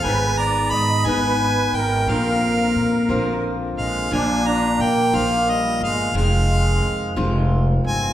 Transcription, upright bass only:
\new Staff \with { instrumentName = "Upright bass" } { \clef bass \time 6/8 \key bes \mixolydian \tempo 4. = 59 aes,,4 aes,8 aes,,4 aes,,8 | bes,,4 bes,8 bes,,4 bes,,8 | bes,,4 bes,8 bes,,4 g,,8 | f,,4 f,8 f,,4 g,,8 | }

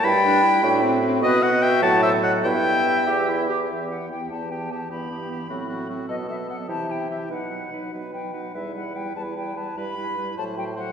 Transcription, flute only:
\new Staff \with { instrumentName = "Flute" } { \time 6/8 \key e \minor \tempo 4. = 99 g''2~ g''8 r8 | b'8 dis''8 e''8 fis''8 c''8 dis''8 | e''2~ e''8 r8 | e''8 fis''8 g''8 a''8 g''8 a''8 |
b''2~ b''8 r8 | dis''8 e''8 fis''8 a''8 g''8 e''8 | fis''4. r8 g''8 fis''8 | e''8 fis''8 g''8 a''8 g''8 a''8 |
b''4. a''8 g''8 fis''8 | }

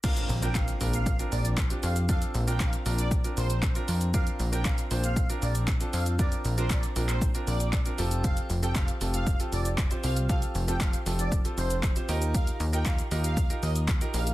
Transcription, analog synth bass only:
\new Staff \with { instrumentName = "Analog synth bass" } { \clef bass \time 4/4 \key bes \major \tempo 4 = 117 r8 bes,,4 bes,,4 bes,,4 f,8~ | f,8 bes,,4 bes,,4 bes,,4 f,8~ | f,8 bes,,4 bes,,4 bes,,4 f,8~ | f,8 bes,,4 bes,,4 bes,,4 f,,8~ |
f,,8 f,,4 f,,4 f,,4 c,8~ | c,8 f,,4 f,,4 f,,4 ees,8~ | ees,8 ees,4 ees,4 ees,4 bes,,8 | }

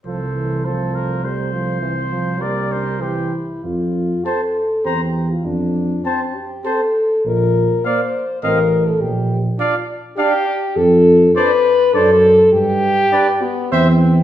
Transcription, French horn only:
\new Staff \with { instrumentName = "French horn" } { \time 3/4 \key f \major \tempo 4 = 101 a2. | c'4 bes8 d'8 e'4 | f'4 a'4 g'8. f'16 | d'4 c'8 g'8 a'4 |
bes'4 c''4 bes'8. a'16 | g'8. r16 f'8 r8 g'4 | \key d \dorian a'4 b'4 a'4 | g'4. b8 c'4 | }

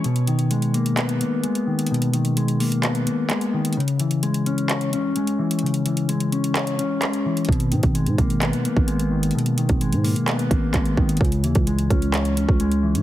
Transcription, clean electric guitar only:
\new Staff \with { instrumentName = "Clean electric guitar" } { \clef bass \time 4/4 \key gis \minor \tempo 4 = 129 b,8 dis8 gis8 ais8 b8 ais8 gis8 dis8 | b,8 dis8 gis8 ais8 b8 ais8 gis8 dis8 | cis8 e8 gis8 cis'8 cis''8 cis'8 gis8 e8 | cis8 e8 gis8 cis'8 cis''8 cis'8 gis8 e8 |
b,8 dis8 gis8 ais8 b8 ais8 gis8 dis8 | b,8 dis8 gis8 ais8 b8 ais8 gis8 dis8 | cis8 e8 gis8 cis'8 cis''8 cis'8 gis8 e8 | }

